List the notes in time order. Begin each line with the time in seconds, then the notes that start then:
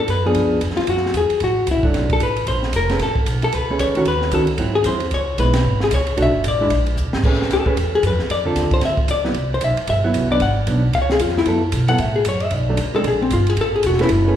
0.08 F#2 B4, kick, hi-hat pedal, ride
0.25 F3 B3 D4 G#4
0.35 C#2, kick, ride
0.61 F2, kick, hi-hat pedal, ride
0.70 snare
0.77 F4, muted upright bass stroke, snare, ride
0.87 F#2 F#4, kick, ride
0.97 snare
1.06 snare
1.14 E2 G#4, kick, hi-hat pedal, ride
1.30 muted upright bass stroke, ride
1.40 A1 F#4, kick, ride
1.67 C#2, kick, hi-hat pedal, ride
1.71 E4
1.77 A1
1.83 F#1 F#3 A3 D4, kick
1.94 B1, kick, snare, ride
2.10 A4, kick, ride
2.20 A1 B4, kick, hi-hat pedal, ride
2.36 ride
2.47 A#1 C5, kick, ride
2.63 snare
2.73 F1 A#4, kick, hi-hat pedal, ride
2.89 A3 C#4 G#4 B4, snare, ride
2.99 A1 A4, kick, snare, ride
3.15 kick
3.26 B1, kick, hi-hat pedal, ride
3.42 A4, ride
3.52 C#2 B4, kick, ride
3.70 A3 C#4 G#4 B4
3.79 D2 C#5, kick, hi-hat pedal, ride
3.95 D#3 A3 C#4 F#4, ride
4.05 D#2 B4, kick, ride
4.21 snare
4.31 C#2 D#3 A3 C#4 F#4 A4, kick, hi-hat pedal, ride
4.47 ride
4.58 G#2 F#3 C4 E4, kick, ride
4.75 G#4
4.84 E2 F#3 C4 E4 C5, kick, hi-hat pedal, ride
5.00 ride
5.11 C#2 C#5, kick, ride
5.38 B1 G#3 B3 E4 B4, kick, hi-hat pedal, ride
5.53 snare, ride
5.64 G#1, kick
5.80 G#4, snare
5.91 C#2 C#5, kick, hi-hat pedal, ride
6.07 ride
6.17 B1 A3 D4 F#4, kick, ride
6.22 E5
6.27 A1
6.35 F#1
6.44 A1, kick, hi-hat pedal, ride
6.48 D5
6.61 G#3 D4 E4
6.70 A#1, kick, ride
6.86 ride
6.96 D2, hi-hat pedal
7.05 A#1
7.13 G#1, snare
7.24 A1 A3 C#4 G#4 B4, kick, crash
7.33 snare
7.42 snare
7.50 C#2 A4, kick, snare, hi-hat pedal, ride
7.66 A3 C#4 G#4 B4, kick
7.77 E2, kick, ride
7.95 G#4
8.02 F#2, kick, hi-hat pedal, ride
8.07 B4
8.11 E2
8.19 C#2, snare
8.29 F2 D5, kick, ride
8.45 D3 C4 F4 A4
8.55 D#2, kick, snare, hi-hat pedal, ride
8.71 C5, muted upright bass stroke, kick, ride
8.81 D2, kick, snare, ride
8.85 E5
8.97 kick
9.08 C#2 D5, kick, hi-hat pedal, ride
9.24 F#3 B3 E4, snare
9.34 C2, kick, ride
9.54 C5
9.61 B1 E5, kick, hi-hat pedal, ride
9.77 muted upright bass stroke, ride
9.87 G1 E5, kick, ride
10.04 F#3 B3 E4
10.14 C2, kick, hi-hat pedal, ride
10.31 F#3 B3 D4 D5
10.40 G#1 F#5, kick, ride
10.67 B1 F#3 B3 D4, kick, hi-hat pedal, ride
10.93 C#2 F5, kick, ride
11.02 C#5
11.10 G#4, snare
11.19 F2 F4, kick, hi-hat pedal, ride
11.29 snare
11.38 E4, snare
11.46 F#2 F#3 B3 E4 A4, kick, ride
11.72 B2, kick, hi-hat pedal, ride
11.88 F#3 B3 E4 A4 F#5, ride
11.98 A2 E5, kick, ride
12.16 G#4
12.25 F#2 C#5, kick, hi-hat pedal, ride
12.40 E5, ride
12.51 B1, kick, ride
12.56 D5
12.69 F#3 A3 D4
12.77 D2, kick, hi-hat pedal, ride
12.94 G#3 C4 D4 A4
13.04 A#1 G#4, kick, ride
13.22 C4
13.30 G1 F4, kick, hi-hat pedal, ride
13.47 G#4, ride
13.57 A1, kick, ride
13.61 A4
13.76 G#4
13.83 E1 F#4, kick, hi-hat pedal, ride
13.93 snare
13.99 A3 C#4 G#4 B4, snare, ride
14.03 E4
14.09 F#1, kick, ride
14.27 A3 C#4 G#4 B4